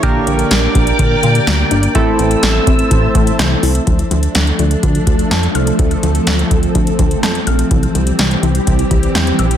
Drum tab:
HH |x-xxx-xxx-xxx-xx|x-xxx-xxx-xxx-ox|xxxxxxxxxxxxxxxx|xxxxxxxxxxxxxxxx|
SD |----o-------o---|----o-------o---|----o-------o---|----o-------o---|
BD |o-----o-o-------|o-----o-o-o-----|o-------o-o-----|o-----o-o-o-----|

HH |xxxxxxxxxxxxxxxx|
SD |----o-------o---|
BD |o-------o-o-----|